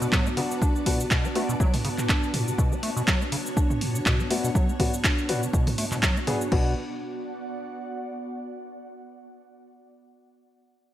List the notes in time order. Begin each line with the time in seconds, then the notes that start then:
Already playing: B3 D4 F#4 D5 A5
0.02 B2, cabasa
0.12 F#3, kick, clap, mid tom, cabasa
0.26 B3, cabasa
0.37 C#3 B3 D4 F#4, open hi-hat
0.51 cabasa
0.62 D4, kick, cabasa
0.76 cabasa
0.86 A2 B3 D4 F#4, kick, open hi-hat
1.00 C#3, cabasa
1.11 B2, kick, clap, cabasa
1.24 B3, cabasa
1.35 A3 B3 D4 F#4, open hi-hat
1.49 B2, cabasa
1.60 F#3, kick, cabasa
1.74 B3, mid tom, open hi-hat, cabasa
1.85 C#3, open hi-hat
1.98 clap, mid tom, cabasa
2.09 D4, kick, clap, cabasa
2.23 cabasa
2.34 A2, mid tom, open hi-hat
2.47 C#3, cabasa
2.58 B2 C#5, kick, cabasa
2.72 B3, cabasa
2.83 A3, open hi-hat
2.97 B2, cabasa
3.08 F#3, kick, clap, cabasa
3.21 B3, cabasa
3.32 C#3, open hi-hat
3.46 cabasa
3.57 D4, kick, cabasa
3.70 mid tom, cabasa
3.81 A2, open hi-hat
3.95 C#3, cabasa
4.06 B2, kick, clap, mid tom, cabasa
4.20 B3, cabasa
4.31 A3 B3 D4 F#4, open hi-hat
4.44 B2, cabasa
4.55 F#3, kick, cabasa
4.69 B3, cabasa
4.80 C#3 B3 D4 F#4, kick, mid tom, open hi-hat
4.94 cabasa
5.04 D4, kick, clap, cabasa
5.18 cabasa
5.29 A2 B3 D4 F#4, open hi-hat
5.42 C#3, cabasa
5.53 B2, kick, cabasa
5.67 B3, mid tom, open hi-hat, cabasa
5.78 A3, open hi-hat
5.92 B2, clap, mid tom, cabasa
6.03 F#3, kick, clap, cabasa
6.16 B3, cabasa
6.27 C#3 B3 D4 G#4, mid tom, open hi-hat
6.41 cabasa
6.52 B1 B2 B3 D4 F#4 D5, kick, crash
6.60 F#4
6.68 D5
6.74 F#5